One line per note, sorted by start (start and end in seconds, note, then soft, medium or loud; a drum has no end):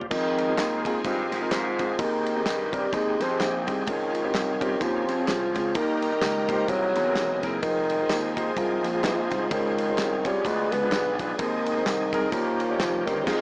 0.01 floor tom medium
0.11 0.51 F2 loud
0.11 0.81 D#3 loud
0.11 3.83 D#3 medium
0.11 1.97 G#3 medium
0.11 0.39 C4 medium
0.11 5.71 C4 medium
0.11 0.40 D#4 medium
0.11 1.97 F4 medium
0.11 0.40 F4 medium
0.11 5.71 G#4 medium
0.11 0.40 G#4 medium
0.11 kick loud
0.11 crash loud
0.11 tambourine medium
0.38 ride medium
0.38 tambourine soft
0.48 0.73 C4 medium
0.48 0.74 D#4 medium
0.48 0.74 F4 medium
0.48 0.74 G#4 medium
0.58 0.98 D#2 medium
0.58 snare loud
0.58 clap loud
0.58 ride medium
0.58 tambourine loud
0.85 0.99 C4 medium
0.85 0.99 D#4 medium
0.85 1.00 F4 medium
0.85 1.00 G#4 loud
0.85 kick medium
0.85 ride medium
0.85 tambourine soft
1.05 1.28 G2 loud
1.05 1.49 F3 medium
1.05 1.33 C4 medium
1.05 1.33 D#4 medium
1.05 1.34 F4 medium
1.05 1.34 G4 medium
1.05 kick loud
1.05 ride medium
1.05 tambourine medium
1.31 1.48 G#2 medium
1.31 snare soft
1.31 ride medium
1.31 tambourine medium
1.41 1.67 C4 medium
1.41 1.67 D#4 medium
1.41 1.67 F4 medium
1.41 1.68 A#4 medium
1.51 1.91 G#2 medium
1.51 2.01 F3 medium
1.51 snare loud
1.51 clap loud
1.51 ride medium
1.51 tambourine medium
1.78 1.93 C4 medium
1.78 1.93 D#4 medium
1.78 1.93 F4 medium
1.78 1.93 G#4 medium
1.78 kick medium
1.78 snare soft
1.78 ride medium
1.78 tambourine soft
1.99 2.39 D#2 medium
1.99 2.69 D#3 medium
1.99 2.75 D#3 medium
1.99 2.27 C4 medium
1.99 2.27 D#4 medium
1.99 3.85 G4 medium
1.99 2.27 G4 medium
1.99 2.28 G#4 medium
1.99 kick loud
1.99 ride medium
1.99 tambourine medium
2.26 ride medium
2.26 tambourine medium
2.35 2.61 C4 medium
2.35 2.61 D#4 medium
2.35 2.61 G4 medium
2.35 2.62 G#4 medium
2.45 2.85 G2 medium
2.45 snare loud
2.45 clap loud
2.45 ride medium
2.45 tambourine loud
2.72 2.95 G3 medium
2.72 2.86 C4 medium
2.72 2.87 D#4 medium
2.72 2.87 G4 medium
2.72 2.87 A#4 medium
2.72 kick loud
2.72 ride medium
2.72 tambourine soft
2.92 3.16 D#2 medium
2.92 3.23 G#3 loud
2.92 3.21 C4 medium
2.92 3.21 D#4 medium
2.92 3.21 G4 medium
2.92 3.22 G#4 medium
2.92 kick loud
2.92 ride medium
2.92 tambourine medium
3.20 3.37 F2 medium
3.20 3.68 C4 medium
3.20 snare soft
3.20 ride medium
3.20 tambourine medium
3.29 3.55 C4 medium
3.29 3.55 D#4 medium
3.29 3.55 G4 medium
3.29 3.55 G#4 medium
3.40 3.68 A#1 medium
3.40 snare loud
3.40 clap medium
3.40 ride medium
3.40 tambourine loud
3.66 3.84 C2 medium
3.66 3.80 C4 medium
3.66 3.81 D#4 medium
3.66 3.81 G4 medium
3.66 3.81 G#4 medium
3.66 kick medium
3.66 ride medium
3.66 tambourine soft
3.86 4.27 C#2 loud
3.86 4.57 C#3 medium
3.86 4.83 D#3 loud
3.86 5.73 F3 medium
3.86 4.15 C4 medium
3.86 4.15 C#4 medium
3.86 5.73 C#4 medium
3.86 4.15 F4 medium
3.86 4.15 G#4 medium
3.86 kick loud
3.86 ride medium
3.86 tambourine medium
4.15 ride medium
4.15 tambourine soft
4.23 4.49 C4 medium
4.23 4.49 C#4 medium
4.23 4.49 F4 medium
4.23 4.49 G4 medium
4.34 4.74 C2 medium
4.34 snare loud
4.34 clap loud
4.34 ride medium
4.34 tambourine loud
4.61 4.75 C4 medium
4.61 4.75 C#4 medium
4.61 4.75 F4 medium
4.61 4.75 G4 loud
4.61 kick medium
4.61 ride medium
4.61 tambourine soft
4.81 5.04 D#2 medium
4.81 5.28 F3 loud
4.81 5.09 C4 medium
4.81 5.10 C#4 medium
4.81 5.10 F4 medium
4.81 5.10 G4 medium
4.81 kick loud
4.81 ride medium
4.81 tambourine medium
5.08 5.29 F2 medium
5.08 snare soft
5.08 ride medium
5.08 tambourine medium
5.18 5.43 C4 medium
5.18 5.43 C#4 medium
5.18 5.43 F4 medium
5.18 5.44 G#4 medium
5.28 5.51 C2 loud
5.28 5.77 F3 loud
5.28 snare loud
5.28 clap loud
5.28 ride medium
5.28 tambourine loud
5.55 5.72 C#2 medium
5.55 5.69 C4 medium
5.55 5.69 C#4 medium
5.55 5.69 F4 medium
5.55 5.70 G#4 medium
5.55 kick medium
5.55 snare soft
5.55 ride medium
5.55 tambourine soft
5.74 6.15 D#2 loud
5.74 6.68 D#3 medium
5.74 6.45 D#3 medium
5.74 6.70 D#3 loud
5.74 6.68 G3 medium
5.74 7.61 A#3 medium
5.74 6.03 A#3 medium
5.74 6.03 D#4 medium
5.74 6.68 G4 medium
5.74 6.04 G4 medium
5.74 6.68 A#4 medium
5.74 6.04 A#4 medium
5.74 kick loud
5.74 ride medium
5.74 tambourine medium
6.02 ride medium
6.02 tambourine medium
6.12 6.37 A#3 medium
6.12 6.37 D#4 medium
6.12 6.37 G4 medium
6.12 6.38 A#4 medium
6.22 6.62 C#2 loud
6.22 snare loud
6.22 clap loud
6.22 ride medium
6.22 tambourine loud
6.48 6.63 A#3 medium
6.48 6.63 D#4 medium
6.48 6.63 G4 medium
6.48 6.63 C5 medium
6.48 kick medium
6.48 ride medium
6.48 tambourine soft
6.68 6.92 C2 loud
6.68 7.39 C3 medium
6.68 7.62 E3 medium
6.68 7.43 F#3 loud
6.68 6.97 C4 medium
6.68 10.41 C4 medium
6.68 9.48 D#4 medium
6.68 6.97 E4 medium
6.68 6.97 G#4 medium
6.68 7.61 G#4 medium
6.68 6.98 A#4 medium
6.68 kick loud
6.68 ride medium
6.68 tambourine medium
6.96 7.16 E2 medium
6.96 snare soft
6.96 ride medium
6.96 tambourine medium
7.06 7.31 C4 medium
7.06 7.31 E4 medium
7.06 7.31 G#4 medium
7.06 7.32 A#4 medium
7.15 7.38 E1 medium
7.15 snare loud
7.15 clap medium
7.15 ride medium
7.15 tambourine medium
7.43 7.60 F#1 medium
7.43 7.57 C4 medium
7.43 7.57 E4 medium
7.43 7.57 G#4 medium
7.43 7.57 A#4 medium
7.43 kick medium
7.43 snare soft
7.43 ride medium
7.43 tambourine soft
7.62 8.03 F1 loud
7.62 8.33 D#3 loud
7.62 11.35 F3 medium
7.62 12.29 G#3 medium
7.62 7.91 D#4 medium
7.62 7.92 F4 medium
7.62 12.29 G#4 medium
7.62 7.92 G#4 medium
7.62 7.92 C5 medium
7.62 kick loud
7.62 ride medium
7.62 tambourine medium
7.90 ride medium
7.90 tambourine soft
8.00 8.25 D#4 medium
8.00 8.25 F4 medium
8.00 8.25 G#4 medium
8.00 8.26 C5 medium
8.10 8.50 D#2 medium
8.10 snare loud
8.10 clap loud
8.10 ride medium
8.10 tambourine loud
8.36 8.50 D#4 medium
8.36 8.51 F4 medium
8.36 8.51 G#4 medium
8.36 8.51 C5 loud
8.36 kick medium
8.36 ride medium
8.36 tambourine medium
8.56 8.80 C2 medium
8.56 9.00 F3 medium
8.56 8.85 D#4 medium
8.56 8.85 F4 medium
8.56 8.86 G#4 medium
8.56 8.86 A#4 medium
8.56 kick loud
8.56 ride medium
8.56 tambourine medium
8.84 9.01 A#1 medium
8.84 snare soft
8.84 ride medium
8.84 tambourine medium
8.93 9.19 D#4 medium
8.93 9.19 F4 medium
8.93 9.19 G#4 medium
8.93 9.19 C5 medium
9.03 9.27 A#1 medium
9.03 9.52 F3 medium
9.03 snare loud
9.03 clap medium
9.03 ride medium
9.03 tambourine loud
9.31 9.48 C2 medium
9.31 9.45 D#4 medium
9.31 9.45 F4 medium
9.31 9.46 G#4 medium
9.31 9.46 C5 medium
9.31 kick medium
9.31 snare soft
9.31 ride medium
9.31 tambourine medium
9.50 9.91 C#2 loud
9.50 10.21 C#3 medium
9.50 10.28 D#3 medium
9.50 9.79 C#4 medium
9.50 10.44 C#4 medium
9.50 9.79 F4 medium
9.50 9.79 G#4 medium
9.50 9.80 C5 medium
9.50 kick loud
9.50 ride medium
9.50 tambourine medium
9.78 ride medium
9.78 tambourine medium
9.88 10.13 C#4 medium
9.88 10.13 F4 medium
9.88 10.13 G#4 medium
9.88 10.13 C5 medium
9.98 10.38 C2 medium
9.98 snare loud
9.98 clap loud
9.98 ride medium
9.98 tambourine loud
10.25 10.48 G3 medium
10.25 10.39 C#4 medium
10.25 10.39 F4 medium
10.25 10.39 G#4 medium
10.25 10.40 C#5 medium
10.25 kick loud
10.25 ride medium
10.25 tambourine soft
10.45 10.68 D2 medium
10.45 11.15 D3 medium
10.45 10.74 G#3 loud
10.45 11.38 B3 medium
10.45 10.73 D4 medium
10.45 11.38 D4 medium
10.45 10.73 F4 medium
10.45 10.74 G#4 medium
10.45 10.74 B4 medium
10.45 kick loud
10.45 ride medium
10.45 tambourine medium
10.72 10.89 C#2 loud
10.72 11.19 B3 loud
10.72 snare soft
10.72 ride medium
10.72 tambourine medium
10.82 11.07 D4 medium
10.82 11.07 F4 medium
10.82 11.08 G#4 medium
10.82 11.08 B4 medium
10.92 11.32 B1 medium
10.92 snare loud
10.92 clap medium
10.92 ride medium
10.92 tambourine medium
11.19 11.33 D4 medium
11.19 11.33 F4 medium
11.19 11.33 G#4 medium
11.19 11.34 B4 medium
11.19 kick medium
11.19 snare soft
11.19 ride medium
11.19 tambourine soft
11.38 11.79 D#2 loud
11.38 12.32 C3 medium
11.38 12.33 D#3 medium
11.38 12.09 D#3 medium
11.38 12.32 D#3 medium
11.38 11.67 C4 medium
11.38 11.67 D#4 medium
11.38 12.32 D#4 medium
11.38 11.67 G#4 medium
11.38 11.68 C5 medium
11.38 kick loud
11.38 ride medium
11.38 tambourine medium
11.66 ride medium
11.66 tambourine soft
11.76 12.01 C4 medium
11.76 12.01 D#4 medium
11.76 12.01 G#4 medium
11.76 12.02 C5 medium
11.86 12.26 C2 loud
11.86 snare loud
11.86 clap loud
11.86 ride medium
11.86 tambourine loud
12.13 12.27 C4 medium
12.13 12.27 D#4 medium
12.13 12.27 G#4 medium
12.13 12.28 A#4 loud
12.13 kick loud
12.13 ride medium
12.13 tambourine soft
12.31 12.72 D#2 loud
12.31 13.03 D#3 medium
12.31 13.41 D#3 medium
12.31 12.77 F3 medium
12.31 13.26 G3 medium
12.31 13.26 A#3 medium
12.31 12.61 C#4 medium
12.31 13.26 C#4 medium
12.31 12.61 D#4 medium
12.31 12.61 G4 medium
12.31 13.26 G4 medium
12.31 12.62 A#4 medium
12.31 kick loud
12.31 ride medium
12.31 tambourine medium
12.60 ride medium
12.60 tambourine medium
12.69 12.95 C#4 medium
12.69 12.95 D#4 medium
12.69 12.95 G4 medium
12.69 12.95 C#5 medium
12.78 13.03 F1 loud
12.78 13.07 F3 loud
12.78 snare loud
12.78 clap loud
12.78 ride medium
12.78 tambourine loud
13.05 13.24 G1 medium
13.05 13.26 D#3 medium
13.05 13.20 C#4 medium
13.05 13.21 D#4 medium
13.05 13.21 G4 medium
13.05 13.21 C5 medium
13.05 kick medium
13.05 snare soft
13.05 ride medium
13.05 tambourine medium
13.25 13.41 G#1 loud
13.25 13.41 G#2 medium
13.25 13.41 F3 medium
13.25 13.41 G#3 loud
13.25 13.41 G#3 medium
13.25 13.41 C4 medium
13.25 13.41 D#4 loud
13.25 13.41 F4 medium
13.25 13.41 G#4 medium
13.25 kick loud
13.25 snare loud
13.25 crash medium